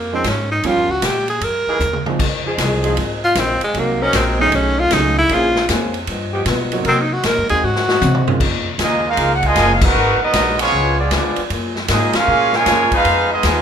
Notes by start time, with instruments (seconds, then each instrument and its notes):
Already playing: upright bass F2, tenor saxophone A#3
0.13 grand piano F3 G#3 A#3 C#4 D#4, tenor saxophone C4
0.24 upright bass G#2, tenor saxophone C#4, kick, snare, hi-hat pedal, ride
0.51 tenor saxophone D#4
0.63 upright bass G2, grand piano F3 G3 A#3 C#4 F4, saxophone section F3 A#3 C#4 G4, tenor saxophone F4, kick, ride
0.76 upright bass F2
0.89 upright bass C#2, tenor saxophone F#4
1.02 upright bass A#2, tenor saxophone G4, kick, snare, hi-hat pedal, ride
1.28 tenor saxophone G#4, ride
1.41 upright bass F#2, tenor saxophone A#4, kick, ride
1.67 saxophone section E3 A#3 D#4 G#4, muted upright bass stroke
1.79 upright bass D#2, hi-hat pedal, mid tom
1.93 mid tom
2.06 grand piano F3 G#3 C4 D#4 F4, mid tom
2.19 upright bass F2, steel-string acoustic guitar F2 D#3 G#3, kick, crash
2.23 steel-string acoustic guitar C4
2.46 saxophone section F3 C4 D#4 G#4
2.58 upright bass C2, steel-string acoustic guitar F2 D#3 G#3 C4, kick, snare, hi-hat pedal, ride
2.84 grand piano F3 G#3 C4 D#4 F4, saxophone section F3 C4 D#4 G#4, ride
2.97 upright bass G#1, steel-string acoustic guitar F2 D#3 G#3 C4, kick, ride
3.24 tenor saxophone F4
3.35 upright bass A#1, steel-string acoustic guitar F2 D#3 G#3 C4, kick, snare, hi-hat pedal, ride
3.40 tenor saxophone C4
3.61 tenor saxophone G#3, muted upright bass stroke, ride
3.74 upright bass C2, steel-string acoustic guitar C3 F#3 A#3 D#4, grand piano F#3 A#3 C4 D#4 F#4, kick, ride
3.79 tenor saxophone A#3
4.01 saxophone section F#3 C4 D#4 A#4, tenor saxophone C#4
4.13 upright bass A#1, steel-string acoustic guitar C3 F#3 A#3 D#4, tenor saxophone C4, kick, snare, hi-hat pedal, ride
4.39 saxophone section D#3 A3 C#4 G#4, grand piano F#3 A3 C#4 D#4 G#4, tenor saxophone D#4
4.52 upright bass B1, steel-string acoustic guitar B2 A3 D#4 G#4, tenor saxophone C#4, kick, ride
4.79 tenor saxophone F4
4.91 upright bass C#2, steel-string acoustic guitar B2 A3 D#4 G#4, grand piano F#3 A3 C#4 D#4 G#4, tenor saxophone D#4, kick, snare, hi-hat pedal, ride
5.18 tenor saxophone E4
5.29 upright bass A#1, saxophone section C#3 A#3 C4 G#4, steel-string acoustic guitar A#3 C#4 G#4 C5, tenor saxophone F4, kick, ride
5.55 snare
5.69 upright bass F2, steel-string acoustic guitar A#3 C#4 G#4 C5, kick, snare, hi-hat pedal, ride
5.94 ride
6.07 upright bass G2, steel-string acoustic guitar G2 F3 B3 D#4, kick, ride
6.33 saxophone section F3 B3 D#4 G4
6.46 steel-string acoustic guitar G2 F3 B3 D#4, upright bass B2, kick, snare, hi-hat pedal, ride
6.72 grand piano F#3 A#3 C4 D#4 F#4, ride
6.85 steel-string acoustic guitar C3 F#3 A#3 D#4, upright bass C3, saxophone section F#3 C4 D#4 A#4, tenor saxophone C4, kick, ride
7.01 tenor saxophone D#4
7.13 tenor saxophone F#4
7.23 upright bass A#2, steel-string acoustic guitar C3 F#3 A#3 D#4, tenor saxophone A#4, kick, snare, hi-hat pedal, ride
7.38 upright bass F#2
7.49 upright bass D#2, grand piano G#3 A#3 C4 D#4 F#4, tenor saxophone G#4, ride
7.62 steel-string acoustic guitar G#2 F#3 C4 D#4, upright bass G#2, tenor saxophone F#4
7.75 snare
7.88 saxophone section F#3 C4 D#4 F#4, snare
8.01 steel-string acoustic guitar G#2 F#3 C4 D#4, upright bass C3, hi-hat pedal, high tom
8.15 mid tom
8.27 grand piano G#3 A#3 C#4 D#4 F4, floor tom
8.40 upright bass F2, steel-string acoustic guitar C#3 F3 A#3 D#4, kick, crash
8.78 upright bass D#2, steel-string acoustic guitar C#3 F3 A#3 D#4, trombone section G#3 A#3 D#4, trumpet section A#3 F4 G#4 D#5, kick, snare, hi-hat pedal, ride
9.06 trombone section G#3 A#3 F4, trumpet section D#4 G#4 A#4 F5
9.17 upright bass C#2, steel-string acoustic guitar C#3 F3 A#3 D#4, kick, ride
9.35 trumpet section F#5
9.43 trombone section A#2 F3 G#3, trumpet section F4 A#4 D#5 G#5, kick, ride
9.55 upright bass F#1, steel-string acoustic guitar C#3 F3 A#3, snare, hi-hat pedal, ride
9.60 steel-string acoustic guitar D#4
9.73 trumpet section F5
9.81 trombone section B3 D#4 F#4, trumpet section D#4 A#4 B4 F#5, kick, crash
9.94 upright bass G#1, steel-string acoustic guitar G#3 B3 F#4
9.98 steel-string acoustic guitar A#4
10.20 trombone section F#3 B3 D#4, trumpet section B3 F#4 A#4 D#5, muted upright bass stroke
10.33 upright bass A#1, steel-string acoustic guitar G#3 B3 F#4 A#4, kick, snare, hi-hat pedal, ride
10.59 trombone section F3 G#3 C#4, trumpet section B3 F4 G#4 C#5, ride
10.72 upright bass C#2, steel-string acoustic guitar C#3 F3 B3 D4, kick
10.98 trombone section G#3 B3 D4, trumpet section B3 F4 G#4 D5
11.11 upright bass D2, steel-string acoustic guitar C#3 F3 B3 D4, trombone section G#3 B3 D4, trumpet section B3 F4 G#4 D5, kick, snare, hi-hat pedal, ride
11.36 muted upright bass stroke, ride
11.50 upright bass F#2, steel-string acoustic guitar F#3 A#3 F4 G#4, kick, ride
11.76 snare
11.88 upright bass G#2, steel-string acoustic guitar F#3 A#3 F4 G#4, trumpet section C4 F4 G#4 D#5, trombone section D#4, kick, snare, hi-hat pedal, ride
12.13 trombone section A#3 C#4 F4, trumpet section C#4 G#4 A#4 F5, muted upright bass stroke, snare, ride
12.27 upright bass A#2, steel-string acoustic guitar F#3 A#3 F4 G#4
12.53 trombone section C#3 F3 G#3, trumpet section F4 A#4 C#5 G#5, snare
12.66 upright bass F#2, steel-string acoustic guitar F#3 A#3 F4 G#4, kick, snare, hi-hat pedal, ride
12.91 trombone section G#3 B3 F4, trumpet section D#4 G#4 B4 F5, muted upright bass stroke, kick, ride
13.05 upright bass F2, steel-string acoustic guitar F3 B3 D#4, kick, ride
13.09 steel-string acoustic guitar G#4
13.33 trombone section G#3 B3 D#4, trumpet section B3 F4 G#4 D#5
13.43 upright bass D#2, steel-string acoustic guitar F3 B3 D#4 G#4, kick, snare, hi-hat pedal, ride